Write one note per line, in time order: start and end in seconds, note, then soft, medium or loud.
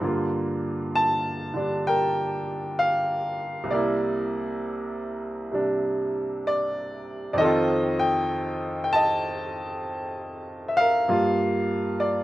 0.00 3.68 G2 soft
0.00 1.52 D3 soft
0.00 3.69 A#3 soft
0.00 0.21 D5 soft
0.04 3.71 F4 medium
0.95 1.89 A5 loud
1.54 3.69 D3 soft
1.54 3.69 G3 soft
1.54 3.70 D4 medium
1.87 3.66 A#4 medium
1.87 2.81 G5 medium
2.79 3.73 F5 medium
3.64 7.35 C2 medium
3.64 5.50 C3 medium
3.71 7.39 A#3 soft
3.71 5.51 A#4 medium
3.71 5.20 D5 medium
3.75 7.41 E4 medium
5.51 7.37 C3 soft
5.51 7.38 G3 soft
5.51 7.38 D4 medium
6.47 7.32 D5 medium
7.33 11.06 F2 medium
7.33 11.07 D#3 medium
7.33 7.38 D5 medium
7.38 11.09 C4 medium
7.38 9.20 A4 medium
7.38 8.01 D#5 loud
7.44 11.08 F4 medium
7.99 8.82 G5 medium
8.84 8.93 G5 medium
8.93 10.75 D#5 medium
8.93 10.64 A5 loud
10.68 10.77 E5 medium
10.77 12.23 A#4 medium
10.77 11.96 F5 loud
11.08 12.23 G2 medium
11.08 12.23 G3 medium
11.08 12.23 A#3 medium
11.08 12.23 F4 medium
12.00 12.23 D5 medium